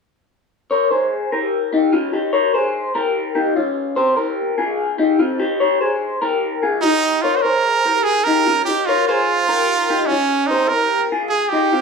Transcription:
0.71 A#4 C#5
0.91 G#4 C5
1.32 G4 A#4
1.73 D#4 G4
1.93 C#4 F4
2.13 D#4 G4
2.33 A#4 C#5
2.54 G#4 C5
2.95 G4 A#4
3.35 D#4 G4
3.56 C#4 F4
3.96 G4 C5
4.17 G4 A#4
4.58 F4 G#4
4.98 D#4 G4
5.19 C4 F4
5.40 D#4 G4
5.60 G4 C#5
5.81 G#4 C5
6.22 G4 A#4
6.63 F4 G#4
6.81 D#4 G4
7.22 F4 A#4 C#5
7.36 C5
7.42 G#4 A#4 C5
7.85 G4 A#4
8.04 G#4
8.24 D#4 G4 A#4
8.47 C#4 F4
8.65 D#4 G4
8.86 F4 A#4 C#5
9.07 F4 G#4 C5
9.49 G4 A#4
9.90 D#4 G4
10.06 C#4
10.10 C#4 F4
10.47 D#4 C5
10.52 G4
10.68 G4 A#4
11.12 F4 G#4
11.29 G#4
11.49 D#4 G4
11.73 C4 F4

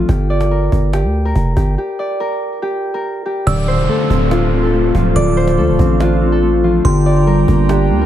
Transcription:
Already playing: F4 A4 C5 D5
0.09 G1 G4, cajon bass
0.30 D5
0.41 cajon slap
0.51 A#4
0.72 G1, cajon bass
0.93 G4, cajon slap
1.04 D2
1.14 cajon slap
1.22 A#4, cajon slap
1.29 cajon slap
1.36 F1, cajon bass
1.56 G1 G4, cajon bass
1.78 G4
1.99 D5
2.20 A#4
2.62 G4
2.94 A#4
3.26 G4
3.47 D1 D3 D4 A4 C5 D5 F5 E6, cajon bass, downlifter
3.68 C5
3.79 E1
3.89 A3 A4, cajon slap
4.10 D1 C4, cajon bass
4.31 D4 F4, cajon slap
4.52 C4, cajon slap
4.58 cajon slap
4.63 A4, cajon slap
4.68 cajon slap
4.73 A3, cajon slap
4.94 D1 F3 F4, cajon bass
5.16 D1 D3 D5 D6, cajon bass
5.37 C5, cajon slap
5.48 cajon slap
5.58 D2 A3 A4, cajon slap
5.69 D1
5.79 A1 C4, cajon bass
6.00 D4 F4, cajon slap
6.21 C4, cajon slap
6.32 A4
6.42 A3, cajon slap
6.64 F3 F4
6.85 G1 D3 G4 G5 A#5 C6, cajon bass
7.06 D5
7.27 G3 A#4, cajon slap
7.48 G1 A#3, cajon bass
7.69 D4 G4, cajon slap
7.90 D2 A#3, cajon slap
7.96 cajon slap
8.01 A#4, cajon slap

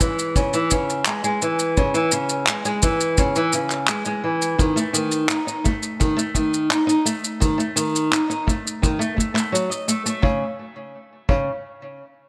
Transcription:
0.00 E3, kick, shaker
0.19 shaker
0.36 C#3, kick, shaker
0.53 E3, shaker
0.71 C#3, kick, shaker
0.90 shaker
1.06 G#3, clap, shaker
1.24 G#3, shaker
1.42 E3, shaker
1.59 shaker
1.77 C#3, kick, shaker
1.94 E3, shaker
2.12 C#3, shaker
2.29 shaker
2.47 G#3, clap, shaker
2.65 G#3, shaker
2.82 E3, kick, shaker
3.00 shaker
3.18 C#3, kick, shaker
3.36 E3, shaker
3.53 C#3, shaker
3.70 clap, shaker
3.88 G#3, clap, shaker
4.05 G#3, shaker
4.24 E3
4.42 shaker
4.58 D#3, kick, shaker
4.76 A3, shaker
4.93 D#3, shaker
5.11 shaker
5.29 D#4, clap, shaker
5.47 D#4, shaker
5.64 A3, kick, shaker
5.83 shaker
6.00 D#3, kick, shaker
6.17 A3, shaker
6.34 D#3, kick, shaker
6.54 shaker
6.70 D#4, clap, shaker
6.87 D#4, shaker
7.05 A3, shaker
7.24 shaker
7.40 D#3, kick, shaker
7.58 A3, shaker
7.76 D#3, shaker
7.96 shaker
8.12 D#4, clap, shaker
8.30 D#4, shaker
8.47 A3, kick, shaker
8.67 shaker
8.82 D#3, kick, shaker
8.99 A3, shaker
9.17 A3, kick, shaker
9.34 A3, clap, shaker
9.52 F#3, shaker
9.70 D#5, shaker
9.88 A3, shaker
10.06 A3, shaker
10.22 C#3, kick
11.29 C#3, kick

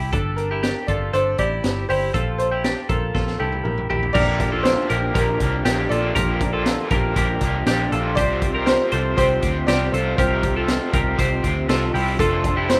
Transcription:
Already playing: C2 E4 G4
0.13 G1 D4 A4, kick, closed hi-hat
0.36 A#4, closed hi-hat
0.51 E4 G4
0.63 D4 G4, snare, closed hi-hat
0.87 G1 F4 A4 D5, kick, closed hi-hat
1.13 G1 D4 A4 C5, closed hi-hat
1.38 A1 E4 G4 D5, kick, closed hi-hat
1.64 G1, snare, closed hi-hat
1.89 G1 E4 G4 C5, open hi-hat
2.14 A#1 F4 A4, kick, closed hi-hat
2.38 C5, closed hi-hat
2.51 E4 G4
2.64 D4 G4, snare, closed hi-hat
2.89 A#1 F4 A4 A#4, kick, closed hi-hat
3.14 A#1 F4 A4, kick, snare
3.27 snare
3.39 C2 E4 G4 A4, high tom
3.52 high tom
3.63 A#1 A#4, mid tom
3.78 mid tom
3.90 A#1 E4 G4, floor tom
4.03 floor tom
4.13 A#1 A#2 D3 F3 A#3 D4 G4 A#4 D5, kick, crash
4.40 F3 A#3 D4 G4, kick, closed hi-hat
4.52 F4 A4
4.63 A#2 D3 F3 A#3 D4 G4 C5, snare, closed hi-hat
4.89 A#1 F3 A#3 D4 G4 A#4, closed hi-hat
5.14 A#1 F3 A#3 D4 G4 A#4, kick, closed hi-hat
5.40 C2 F3 A#3 D4 G4, kick, closed hi-hat
5.65 A#1 A#2 D3 F3 A#3 D4 G4, snare, closed hi-hat
5.89 A#1 F3 A#3 D4 F4 G4 A4 D5, closed hi-hat
6.15 A#1 A#2 D3 F3 A#3 D4 G4 A#4, kick, closed hi-hat
6.40 F3 A#3 D4 G4, kick, closed hi-hat
6.53 F4 A4
6.66 A#2 D3 F3 A#3 D4 G4, snare, closed hi-hat
6.90 A#1 F3 A#3 D4 G4 A#4, kick, closed hi-hat
7.16 A#1 F3 A#3 D4 G4 A#4, kick, closed hi-hat
7.41 C2 F3 A#3 D4 G4, kick, closed hi-hat
7.66 A#1 A#2 D3 F3 A#3 D4 G4, snare, closed hi-hat
7.92 A#1 F3 A#3 D4 F4 G4 A4, closed hi-hat
8.15 C2 C3 F3 C4 F4 G4 C5 D5, kick, closed hi-hat
8.19 G4
8.42 C4 F4 G4, kick, closed hi-hat
8.55 G4 A#4
8.66 C3 F3 C4 F4 G4 C5, snare, closed hi-hat
8.91 C2 C4 F4 G4 A4 C5, closed hi-hat
9.17 C2 F3 C4 F4 G4 C5, kick, closed hi-hat
9.42 D2 C4 F4 G4, kick, closed hi-hat
9.67 C2 C3 F3 C4 F4 G4 D5, snare, closed hi-hat
9.92 C2 C4 F4 G4 A4 C5, closed hi-hat
10.16 C2 C3 F3 C4 F4 G4 A#4 C5, kick, closed hi-hat
10.43 C4 F4 G4, kick, closed hi-hat
10.56 F4 A4
10.68 C3 F3 C4 F4 G4, snare, closed hi-hat
10.92 C2 C4 F4 G4 A#4, kick, closed hi-hat
11.17 C2 F3 C4 F4 G4 C5, kick, closed hi-hat
11.43 D2 C4 F4 G4, kick, closed hi-hat
11.68 C2 C3 F3 C4 F4 G4 A4, snare, closed hi-hat
11.94 C2 C4 E4 F4 G4, open hi-hat
12.19 F1 F3 A3 D4 F4 A4 C5, kick, closed hi-hat
12.43 D4 A4 C5, kick, closed hi-hat
12.57 E4 G4
12.69 F3 A3 D4 A4 C5, snare, closed hi-hat

